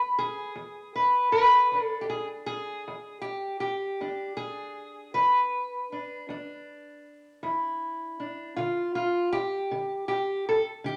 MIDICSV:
0, 0, Header, 1, 2, 480
1, 0, Start_track
1, 0, Tempo, 762389
1, 2518, Time_signature, 12, 3, 24, 8
1, 6904, End_track
2, 0, Start_track
2, 0, Title_t, "Steel-string acoustic guitar"
2, 0, Program_c, 0, 25
2, 0, Note_on_c, 0, 40, 74
2, 65, Note_off_c, 0, 40, 0
2, 116, Note_on_c, 0, 68, 98
2, 349, Note_on_c, 0, 40, 70
2, 597, Note_off_c, 0, 68, 0
2, 601, Note_on_c, 0, 71, 87
2, 786, Note_off_c, 0, 40, 0
2, 825, Note_off_c, 0, 71, 0
2, 832, Note_on_c, 0, 71, 96
2, 1080, Note_on_c, 0, 40, 68
2, 1090, Note_on_c, 0, 62, 45
2, 1153, Note_off_c, 0, 71, 0
2, 1153, Note_on_c, 0, 69, 96
2, 1264, Note_off_c, 0, 69, 0
2, 1267, Note_on_c, 0, 67, 68
2, 1315, Note_off_c, 0, 67, 0
2, 1319, Note_on_c, 0, 68, 83
2, 1420, Note_off_c, 0, 68, 0
2, 1511, Note_off_c, 0, 40, 0
2, 1551, Note_on_c, 0, 68, 93
2, 1811, Note_on_c, 0, 40, 70
2, 2022, Note_off_c, 0, 68, 0
2, 2024, Note_on_c, 0, 67, 85
2, 2236, Note_off_c, 0, 40, 0
2, 2260, Note_off_c, 0, 67, 0
2, 2268, Note_on_c, 0, 67, 82
2, 2523, Note_off_c, 0, 62, 0
2, 2523, Note_on_c, 0, 40, 74
2, 2525, Note_on_c, 0, 62, 45
2, 2747, Note_off_c, 0, 67, 0
2, 2750, Note_on_c, 0, 68, 91
2, 2952, Note_off_c, 0, 40, 0
2, 3234, Note_off_c, 0, 68, 0
2, 3237, Note_on_c, 0, 71, 89
2, 3240, Note_on_c, 0, 40, 71
2, 3671, Note_off_c, 0, 40, 0
2, 3727, Note_off_c, 0, 62, 0
2, 3729, Note_on_c, 0, 62, 45
2, 3958, Note_on_c, 0, 40, 68
2, 3964, Note_off_c, 0, 62, 0
2, 3966, Note_on_c, 0, 62, 49
2, 4390, Note_off_c, 0, 40, 0
2, 4676, Note_off_c, 0, 71, 0
2, 4677, Note_on_c, 0, 40, 75
2, 4679, Note_on_c, 0, 64, 48
2, 5110, Note_off_c, 0, 40, 0
2, 5153, Note_off_c, 0, 62, 0
2, 5161, Note_on_c, 0, 62, 48
2, 5371, Note_off_c, 0, 62, 0
2, 5390, Note_off_c, 0, 64, 0
2, 5392, Note_on_c, 0, 65, 85
2, 5403, Note_on_c, 0, 50, 69
2, 5629, Note_off_c, 0, 65, 0
2, 5636, Note_on_c, 0, 65, 87
2, 5832, Note_off_c, 0, 50, 0
2, 5869, Note_off_c, 0, 65, 0
2, 5871, Note_on_c, 0, 67, 98
2, 6116, Note_on_c, 0, 50, 74
2, 6340, Note_off_c, 0, 67, 0
2, 6347, Note_on_c, 0, 67, 85
2, 6549, Note_off_c, 0, 50, 0
2, 6593, Note_off_c, 0, 67, 0
2, 6602, Note_on_c, 0, 69, 95
2, 6703, Note_off_c, 0, 69, 0
2, 6827, Note_on_c, 0, 50, 75
2, 6836, Note_on_c, 0, 67, 93
2, 6904, Note_off_c, 0, 50, 0
2, 6904, Note_off_c, 0, 67, 0
2, 6904, End_track
0, 0, End_of_file